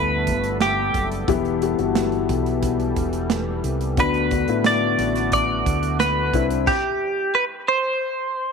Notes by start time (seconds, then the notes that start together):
Already playing: D2 G2 D3 A3 B3 E4 G4 A4 B4
0.27 G1, kick, closed hi-hat
0.44 closed hi-hat
0.61 G4, snare, closed hi-hat
0.94 F#1, kick, closed hi-hat
1.12 closed hi-hat
1.28 E1 E3 G3 B3 E4 G4, kick, closed hi-hat
1.45 closed hi-hat
1.62 B3 E4 G4, closed hi-hat
1.78 G1 B3 E4 F#4, closed hi-hat
1.95 snare, closed hi-hat
2.12 closed hi-hat
2.29 B1, kick, closed hi-hat
2.46 closed hi-hat
2.63 kick, closed hi-hat
2.80 closed hi-hat
2.96 E1, kick, closed hi-hat
3.13 closed hi-hat
3.30 snare, closed hi-hat
3.64 C2, closed hi-hat
3.81 closed hi-hat
3.97 D2 D3 A3 B3 D4 F#4 B4, kick, closed hi-hat
4.14 closed hi-hat
4.31 B3 D4 F#4, kick, closed hi-hat
4.48 A2 B3 D4 E4, closed hi-hat
4.64 D5, snare, closed hi-hat
4.98 A1, closed hi-hat
5.16 snare, closed hi-hat
5.32 D5, kick, closed hi-hat
5.66 D2, kick, closed hi-hat
5.83 closed hi-hat
6.00 B4, snare, closed hi-hat
6.33 C2 G3 C4 D4 E4, kick, closed hi-hat
6.50 closed hi-hat
6.67 G4, kick, crash
7.35 B4
7.68 C5